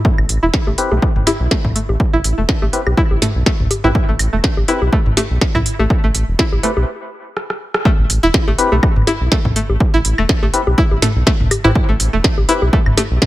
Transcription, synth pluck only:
0.05 0.09 A3 medium
0.43 0.46 E4 medium
0.67 0.72 A3 medium
0.91 0.95 A3 medium
1.27 1.31 E4 loud
1.51 1.57 A3 medium
1.75 1.80 A3 medium
2.13 2.17 E4 loud
2.38 2.43 A3 medium
2.62 2.66 A3 medium
2.97 3.02 E4 loud
3.22 3.28 A3 medium
3.46 3.50 A3 medium
3.84 3.88 E4 loud
4.09 4.14 A3 medium
4.33 4.36 A3 medium
4.68 4.72 E4 loud
4.93 4.99 A3 medium
5.17 5.21 A3 medium
5.55 5.58 E4 loud
5.79 5.84 A3 medium
6.04 6.07 A3 medium
6.39 6.43 E4 loud
6.63 6.70 A3 medium
7.85 7.90 A3 medium
8.23 8.27 E4 loud
8.48 8.53 A3 medium
8.72 8.75 A3 medium
9.07 9.11 E4 loud
9.32 9.38 A3 medium
9.56 9.60 A3 medium
9.94 9.97 E4 loud
10.18 10.23 A3 medium
10.43 10.46 A3 medium
10.78 10.82 E4 loud
11.02 11.09 A3 medium
11.26 11.31 A3 medium
11.64 11.68 E4 loud
11.89 11.94 A3 medium
12.13 12.17 A3 medium
12.49 12.53 E4 loud
12.73 12.79 A3 medium
12.98 13.02 A3 medium

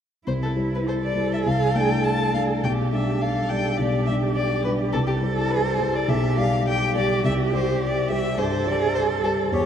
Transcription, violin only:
0.27 0.33 C5 soft
0.43 0.51 A4 soft
0.75 0.80 B4 soft
0.88 0.94 C5 soft
1.03 1.31 D5 soft
1.33 1.39 E5 soft
1.46 1.77 F5 soft
1.75 2.06 G5 soft
2.04 2.33 A5 soft
2.34 2.42 F5 soft
2.64 2.72 G5 soft
2.93 3.23 E5 soft
3.21 3.51 F5 soft
3.49 3.79 G5 soft
3.78 4.06 D5 soft
4.06 4.14 E5 soft
4.35 4.63 D5 soft
4.64 4.72 B4 soft
4.93 4.99 A4 medium
5.07 5.15 G4 soft
5.37 5.52 A4 medium
5.50 5.65 B4 soft
5.66 5.97 C5 soft
5.95 6.10 D5 soft
6.09 6.38 E5 medium
6.38 6.67 F5 medium
6.68 6.95 G5 medium
6.95 7.24 D5 medium
7.25 7.33 E5 medium
7.54 7.82 C5 medium
7.83 8.10 D5 medium
8.10 8.40 E5 medium
8.38 8.69 C5 medium
8.68 8.94 D5 medium
8.95 9.03 C5 medium
9.24 9.32 A4 medium
9.53 9.66 C#5 medium

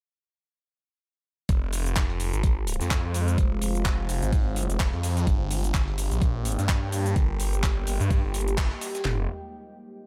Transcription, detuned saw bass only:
1.49 1.95 F1 medium
1.96 2.31 F1 loud
2.33 2.79 G#1 loud
2.81 3.02 F2 medium
3.04 3.36 F2 medium
3.38 3.60 F1 medium
3.62 4.07 F1 loud
4.09 4.20 F1 loud
4.22 4.68 G#1 loud
4.70 4.91 F1 loud
4.93 5.25 F2 medium
5.27 5.73 G1 medium
5.74 6.09 G1 loud
6.11 6.57 A#1 loud
6.59 6.80 G2 loud
6.82 7.14 G2 loud
7.16 7.38 G1 medium
7.40 7.85 G1 loud
7.87 7.98 G1 medium
8.00 8.22 G2 medium
8.24 8.69 G1 medium
9.05 9.27 F1 medium

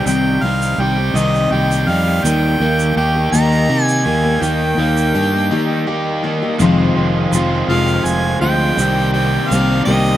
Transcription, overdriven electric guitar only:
0.00 0.43 G3 medium
0.00 1.16 D#4 medium
0.00 0.80 G4 medium
0.06 1.88 C3 medium
0.44 1.89 G3 medium
0.80 1.52 G4 medium
1.16 3.33 D#4 medium
1.53 2.97 G4 medium
1.89 2.61 G3 medium
2.25 4.06 D#3 medium
2.61 4.05 A#3 medium
2.97 3.68 G4 medium
3.34 5.15 D#4 medium
3.70 5.13 G4 medium
4.06 4.77 A#3 medium
4.43 6.24 D#3 medium
4.79 6.23 A#3 medium
5.15 5.86 G4 medium
5.51 6.60 D#4 medium
5.87 6.60 G4 medium
6.24 6.60 A#3 medium
6.58 7.32 F2 loud
6.58 7.32 C3 loud
6.58 6.97 F3 loud
6.58 6.96 G#3 medium
6.58 6.96 C4 medium
6.58 6.94 F4 loud
6.95 7.31 F3 medium
6.95 7.32 G#3 medium
6.95 7.34 C4 medium
6.95 7.34 F4 medium
7.32 7.69 F3 medium
7.32 7.68 G#3 medium
7.32 7.69 C4 medium
7.32 7.67 F4 medium
7.68 8.77 F2 medium
7.68 8.77 C3 medium
7.68 8.43 F3 medium
7.68 8.43 G#3 medium
7.68 8.43 C4 medium
7.68 8.40 F4 medium
8.41 8.77 F3 soft
8.41 8.77 G#3 medium
8.41 8.80 C4 medium
8.41 8.76 F4 medium
8.78 9.51 C3 medium
8.78 9.49 D#3 medium
8.78 9.16 G3 medium
8.78 9.15 C4 loud
8.78 9.13 G4 loud
9.14 9.50 G3 medium
9.14 9.52 C4 medium
9.14 9.53 G4 medium
9.50 9.88 D#3 medium
9.50 9.88 G3 medium
9.50 9.87 C4 medium
9.50 9.86 G4 medium
9.87 10.17 C3 medium
9.87 10.17 D#3 medium
9.87 10.17 G3 medium
9.87 10.17 C4 medium
9.87 10.17 G4 loud

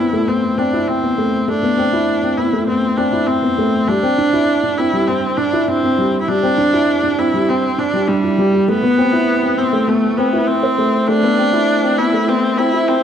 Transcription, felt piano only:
0.00 0.28 B3 medium
0.00 0.58 C4 medium
0.00 0.73 E4 medium
0.13 0.27 A3 medium
0.28 0.37 B3 medium
0.58 0.72 C4 medium
0.73 0.82 E4 medium
0.88 1.02 C4 medium
1.03 1.17 B3 medium
1.18 1.26 A3 medium
1.48 1.56 A3 medium
1.63 1.77 B3 medium
1.78 1.92 C4 medium
1.93 2.01 E4 loud
2.23 2.32 C4 medium
2.38 2.47 B3 medium
2.53 2.67 A3 medium
2.67 2.76 B3 medium
2.98 3.12 C4 medium
3.12 3.21 E4 medium
3.28 3.42 C4 medium
3.42 3.57 B3 medium
3.58 3.67 A3 medium
3.88 3.96 G3 medium
4.03 4.17 C4 medium
4.18 4.32 D4 medium
4.33 4.42 E4 medium
4.63 4.72 D4 medium
4.78 4.87 C4 medium
4.93 5.07 G3 medium
5.08 5.16 C4 medium
5.38 5.52 D4 medium
5.53 5.61 E4 medium
5.68 5.82 D4 medium
5.83 5.97 C4 medium
5.98 6.07 G3 medium
6.28 6.37 G3 medium
6.43 6.57 C4 medium
6.58 6.72 D4 medium
6.73 6.82 E4 medium
7.03 7.12 D4 medium
7.18 7.27 C4 medium
7.33 7.47 G3 medium
7.48 7.57 C4 medium
7.78 7.92 D4 medium
7.93 8.07 G3 medium
8.08 8.22 D4 medium
8.23 8.38 E4 medium
8.38 8.52 G3 medium
8.53 8.67 G4 medium
8.68 8.77 A3 medium
8.83 8.97 B3 medium
8.98 9.12 C4 medium
9.13 9.21 E4 medium
9.43 9.51 C4 medium
9.57 9.66 B3 medium
9.72 9.87 A3 medium
9.88 9.96 B3 medium
10.18 10.32 C4 medium
10.33 10.41 E4 medium
10.48 10.62 C4 medium
10.63 10.77 C5 medium
10.78 10.87 A3 medium
11.08 11.17 A3 medium
11.23 11.37 B3 medium
11.38 11.52 C4 medium
11.53 11.61 E4 loud
11.83 11.92 C4 medium
11.98 12.07 B3 medium
12.13 12.27 A3 medium
12.28 12.37 B3 medium
12.58 12.72 C4 loud
12.73 12.82 E4 loud
12.88 13.02 C4 medium

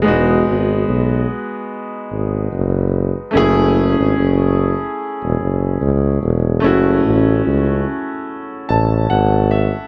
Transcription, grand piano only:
0.02 3.28 G#3 medium
0.02 3.29 B3 medium
0.02 3.30 D#4 medium
0.08 3.31 F#4 medium
3.31 6.57 A3 medium
3.31 6.58 C#4 medium
3.31 6.59 E4 medium
3.37 6.60 G#4 loud
6.60 9.87 A3 medium
6.60 9.87 C#4 medium
6.64 9.87 E4 medium
6.64 9.87 F#4 medium
8.69 9.07 A5 medium
9.10 9.48 F#5 medium
9.51 9.87 E5 medium

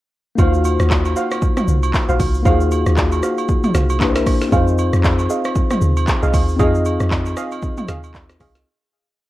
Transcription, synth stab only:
0.38 0.87 F#4 loud
0.38 0.87 C5 medium
0.38 0.87 F5 loud
1.16 1.29 F#4 medium
1.16 1.29 C5 medium
1.16 1.29 F5 medium
2.09 2.18 F#4 medium
2.09 2.18 C5 medium
2.09 2.18 F5 medium
2.45 2.94 F#4 medium
2.45 2.94 C5 medium
2.45 2.94 F5 loud
3.23 3.36 F#4 medium
3.23 3.36 C5 medium
3.23 3.36 F5 medium
3.75 3.88 F#4 medium
3.75 3.88 C5 medium
3.75 3.88 F5 medium
4.15 4.25 A#4 medium
4.15 4.25 C5 medium
4.15 4.25 E5 medium
4.52 5.01 G#4 loud
4.52 5.01 D#5 medium
4.52 5.01 F5 loud
5.30 5.43 G#4 medium
5.30 5.43 D#5 medium
5.30 5.43 F5 medium
6.22 6.32 G#4 medium
6.22 6.32 D#5 medium
6.22 6.32 F5 medium
6.59 7.07 G#4 loud
6.59 7.08 D#5 medium
6.59 7.08 F5 loud
7.37 7.50 G#4 medium
7.37 7.50 D#5 medium
7.37 7.50 F5 medium
7.88 8.01 G#4 medium
7.88 8.02 D#5 medium
7.88 8.02 F5 medium
8.40 8.64 G#4 medium
8.40 8.65 D#5 medium
8.40 8.65 F5 medium

